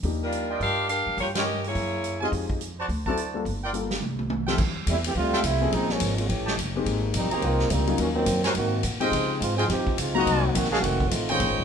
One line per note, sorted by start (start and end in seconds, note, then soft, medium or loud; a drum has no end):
0.03 0.58 D#2 medium
0.03 0.47 F3 medium
0.03 0.47 A#3 medium
0.03 0.47 D4 soft
0.03 0.47 D#4 medium
0.03 0.47 G4 medium
0.03 kick soft
0.03 open hi-hat soft
0.23 0.59 G3 medium
0.23 0.59 D4 medium
0.23 0.59 F4 medium
0.23 0.59 A#4 medium
0.32 closed hi-hat medium
0.50 0.87 F4 medium
0.50 0.87 D5 medium
0.50 0.87 D#5 medium
0.50 0.87 G5 medium
0.60 1.03 G2 medium
0.60 0.88 D4 medium
0.60 0.88 G4 medium
0.60 0.88 A#4 medium
0.60 0.88 F5 loud
0.60 kick soft
0.60 open hi-hat soft
0.89 1.16 D4 medium
0.89 1.16 G4 medium
0.89 1.16 A#4 medium
0.89 1.16 F5 loud
0.89 closed hi-hat medium
1.06 1.17 G#2 medium
1.17 1.72 G2 medium
1.17 1.28 A#3 medium
1.17 1.27 F4 medium
1.17 1.27 G4 medium
1.17 1.27 C#5 medium
1.17 kick soft
1.17 open hi-hat soft
1.35 1.63 C#4 medium
1.35 1.42 F4 medium
1.35 1.63 G4 medium
1.35 1.43 A#4 medium
1.35 1.63 A#4 medium
1.35 1.43 C#5 medium
1.35 1.63 D#5 loud
1.35 1.42 G5 medium
1.35 snare medium
1.35 ride medium
1.64 2.22 A#3 medium
1.64 2.22 E4 medium
1.64 2.22 G#4 medium
1.64 2.22 C#5 medium
1.64 open hi-hat soft
1.75 2.29 F#2 medium
1.75 kick soft
1.75 open hi-hat soft
2.04 closed hi-hat medium
2.21 2.59 G#3 medium
2.21 2.58 C4 medium
2.21 2.59 D#4 medium
2.21 2.28 F4 medium
2.21 2.58 F4 medium
2.21 2.59 G4 medium
2.21 2.29 G#4 medium
2.21 2.28 D#5 medium
2.21 2.28 G#5 medium
2.32 2.86 F2 medium
2.32 kick soft
2.32 open hi-hat soft
2.50 kick medium
2.61 closed hi-hat medium
2.78 2.85 F#4 medium
2.78 2.85 C5 medium
2.78 2.85 D5 medium
2.78 2.86 A5 loud
2.89 3.42 D2 medium
2.89 kick soft
2.89 open hi-hat soft
3.06 3.16 F#3 medium
3.06 3.17 C4 medium
3.06 3.16 D4 medium
3.06 3.17 E4 medium
3.06 3.43 F#4 medium
3.06 3.16 A4 medium
3.06 3.43 C5 medium
3.06 3.44 D5 medium
3.06 3.43 A5 loud
3.06 kick soft
3.17 closed hi-hat medium
3.34 3.44 G3 medium
3.34 3.44 A#3 medium
3.34 3.44 D4 medium
3.34 3.44 F4 medium
3.34 3.45 A4 medium
3.45 3.99 G1 medium
3.45 kick soft
3.45 open hi-hat soft
3.63 3.71 F4 medium
3.63 3.70 A#4 medium
3.63 3.70 D5 medium
3.63 3.70 G5 medium
3.73 3.89 G3 medium
3.73 3.89 A#3 medium
3.73 3.90 D4 soft
3.73 3.89 F4 medium
3.73 3.90 A4 medium
3.73 closed hi-hat medium
3.91 snare medium
3.91 open hi-hat soft
4.01 4.55 C2 medium
4.01 mid tom soft
4.19 mid tom medium
4.30 mid tom medium
4.47 4.57 F3 medium
4.47 4.57 A3 medium
4.47 4.57 C4 medium
4.47 4.58 E4 medium
4.47 4.55 F4 medium
4.47 4.58 G4 medium
4.47 4.55 A4 medium
4.47 4.55 E5 medium
4.47 4.55 G5 loud
4.47 snare medium
4.58 4.86 F2 medium
4.58 kick medium
4.58 crash medium
4.87 5.14 E2 loud
4.87 4.96 G3 medium
4.87 4.96 A3 medium
4.87 4.97 C4 medium
4.87 4.96 E4 medium
4.87 kick soft
4.87 hi-hat pedal medium
4.87 ride medium
5.04 5.11 E3 medium
5.04 5.11 A3 medium
5.04 5.10 C4 medium
5.04 5.11 G4 loud
5.04 ride medium
5.15 5.43 D2 medium
5.15 5.42 G3 medium
5.15 5.42 A3 medium
5.15 5.42 C4 medium
5.15 5.42 F4 loud
5.15 kick soft
5.32 5.40 F4 medium
5.32 5.40 A4 medium
5.32 5.40 E5 medium
5.32 5.40 G5 loud
5.32 snare soft
5.43 5.71 C2 medium
5.43 5.72 G3 medium
5.43 5.72 A3 medium
5.43 5.71 C4 medium
5.43 5.72 E4 medium
5.43 kick soft
5.43 hi-hat pedal medium
5.43 ride medium
5.61 5.98 F3 medium
5.61 5.98 A#3 medium
5.61 5.98 C4 medium
5.61 5.98 C#4 medium
5.61 5.98 G#4 medium
5.72 5.99 A#1 medium
5.72 5.89 F3 medium
5.72 5.89 G#3 medium
5.72 5.90 C4 medium
5.72 5.90 D#4 medium
5.72 kick soft
5.72 ride medium
5.89 6.18 F3 medium
5.89 6.16 G#3 medium
5.89 6.15 A#3 medium
5.89 6.16 C#4 medium
5.89 snare soft
6.00 6.28 G#1 loud
6.00 kick soft
6.00 hi-hat pedal medium
6.00 ride medium
6.17 6.28 G#3 medium
6.17 6.28 A#3 medium
6.17 6.27 C#4 medium
6.17 6.28 F4 medium
6.17 ride medium
6.27 6.56 A1 medium
6.27 6.57 E3 medium
6.27 6.56 A3 medium
6.27 6.57 C#4 medium
6.27 6.56 G4 medium
6.27 kick soft
6.27 ride medium
6.46 6.53 G4 medium
6.46 6.54 C#5 medium
6.46 6.54 D#5 medium
6.46 6.53 A5 medium
6.46 snare medium
6.57 6.85 F#1 medium
6.57 kick soft
6.57 hi-hat pedal medium
6.57 ride medium
6.76 7.12 G#3 medium
6.76 7.13 A#3 medium
6.76 7.12 C4 medium
6.76 7.13 D#4 medium
6.76 7.13 G4 medium
6.86 7.13 G#1 medium
6.86 kick soft
6.86 ride medium
7.14 7.30 A#1 loud
7.14 7.31 G3 medium
7.14 7.31 A#3 medium
7.14 7.31 C4 medium
7.14 7.31 D#4 loud
7.14 kick soft
7.14 hi-hat pedal medium
7.14 ride medium
7.30 7.43 D#3 medium
7.30 7.42 A#3 medium
7.30 7.41 C4 medium
7.30 7.43 G4 loud
7.30 7.68 G#4 medium
7.30 7.68 C5 medium
7.30 7.68 G5 medium
7.30 7.68 A#5 medium
7.30 muted upright bass stroke soft
7.30 ride soft
7.42 7.69 C2 medium
7.42 7.69 A#3 medium
7.42 7.69 C4 medium
7.42 7.69 D#4 medium
7.42 7.71 F4 loud
7.42 kick soft
7.42 ride medium
7.59 snare soft
7.69 7.97 C#2 medium
7.69 7.99 G3 medium
7.69 7.99 A#3 medium
7.69 7.99 C4 medium
7.69 7.99 D#4 loud
7.69 kick soft
7.69 hi-hat pedal medium
7.69 ride medium
7.87 8.25 F#3 medium
7.87 8.25 A#3 medium
7.87 8.25 C#4 medium
7.87 8.25 D#4 medium
7.87 8.25 F4 medium
7.87 ride soft
7.98 8.26 D#2 medium
7.98 8.07 D#3 medium
7.98 8.07 F#3 medium
7.98 8.07 A#3 medium
7.98 8.07 C#4 medium
7.98 kick soft
7.98 ride medium
8.14 8.41 D#3 medium
8.14 8.42 F#3 medium
8.14 8.42 A#3 medium
8.14 8.42 C4 medium
8.26 8.54 F#2 loud
8.26 kick soft
8.26 hi-hat pedal medium
8.26 ride medium
8.44 8.49 F#3 medium
8.44 8.50 A#3 medium
8.44 8.50 C#4 medium
8.44 8.49 D#4 medium
8.44 8.52 F#4 medium
8.44 8.52 A#4 medium
8.44 8.52 C5 medium
8.44 8.52 G#5 loud
8.44 snare medium
8.44 ride medium
8.54 8.82 G#2 medium
8.54 8.81 D#3 medium
8.54 8.81 A#3 medium
8.54 8.82 C4 medium
8.54 8.82 F#4 medium
8.54 kick soft
8.54 ride medium
8.83 9.11 A#2 medium
8.83 kick soft
8.83 hi-hat pedal medium
8.83 ride medium
9.00 9.38 F3 medium
9.00 9.38 G#3 medium
9.00 9.38 C4 medium
9.00 9.38 D#4 medium
9.00 9.38 F4 loud
9.00 9.38 G4 medium
9.00 9.38 C5 medium
9.00 9.38 D#5 medium
9.00 9.38 G5 loud
9.00 ride soft
9.11 9.39 C#3 loud
9.11 kick soft
9.11 ride medium
9.39 9.68 G#2 loud
9.39 9.56 G#3 medium
9.39 9.56 C4 medium
9.39 9.56 D#4 medium
9.39 9.56 F4 medium
9.39 kick soft
9.39 hi-hat pedal medium
9.39 ride medium
9.57 9.63 F3 medium
9.57 9.62 C4 medium
9.57 9.63 D#4 medium
9.57 9.66 F4 medium
9.57 9.63 G#4 loud
9.57 9.66 C5 medium
9.57 9.66 D#5 medium
9.57 9.66 G5 loud
9.57 ride soft
9.68 9.85 F2 medium
9.68 9.95 F3 medium
9.68 9.95 C4 medium
9.68 9.95 D#4 medium
9.68 9.95 G4 medium
9.68 kick soft
9.68 snare soft
9.68 ride medium
9.86 muted upright bass stroke soft
9.86 kick medium
9.97 10.25 C#2 medium
9.97 10.26 G#3 medium
9.97 10.26 C4 medium
9.97 10.26 D#4 medium
9.97 10.27 F4 medium
9.97 kick soft
9.97 hi-hat pedal medium
9.97 ride medium
10.15 10.52 F#3 medium
10.15 10.52 A#3 medium
10.15 10.52 C4 medium
10.15 10.52 D#4 medium
10.15 10.52 F#4 loud
10.15 10.52 F#4 medium
10.15 10.52 C5 medium
10.15 10.52 D#5 medium
10.15 10.52 A#5 loud
10.26 10.54 C2 medium
10.26 kick soft
10.26 ride medium
10.54 10.82 A#1 loud
10.54 10.71 D#3 medium
10.54 10.70 A#3 medium
10.54 10.70 C4 medium
10.54 10.71 F#4 medium
10.54 kick soft
10.54 hi-hat pedal medium
10.54 ride medium
10.64 snare soft
10.71 10.77 F#3 medium
10.71 10.76 A#3 medium
10.71 10.77 C#4 medium
10.71 10.79 F#4 loud
10.71 10.76 G#4 loud
10.71 10.79 D#5 medium
10.71 10.79 F5 medium
10.71 10.79 A5 loud
10.71 snare soft
10.80 11.10 F1 medium
10.80 11.08 D#3 medium
10.80 11.08 A3 medium
10.80 11.08 C4 medium
10.80 11.08 F#4 loud
10.80 kick soft
10.80 ride medium
11.00 kick medium
11.09 11.39 A1 medium
11.09 11.38 A3 medium
11.09 11.39 C4 medium
11.09 11.39 D#4 medium
11.09 11.39 F4 medium
11.09 kick soft
11.09 hi-hat pedal medium
11.09 ride medium
11.29 11.64 D#3 medium
11.29 11.64 G#3 medium
11.29 11.64 C#4 medium
11.29 11.64 D#4 medium
11.29 11.64 F4 medium
11.29 11.64 C5 medium
11.29 11.64 C#5 medium
11.29 11.64 G5 loud
11.29 ride soft
11.40 11.48 A#1 medium
11.40 kick soft
11.40 ride medium
11.48 11.58 G#1 medium
11.59 11.64 F1 medium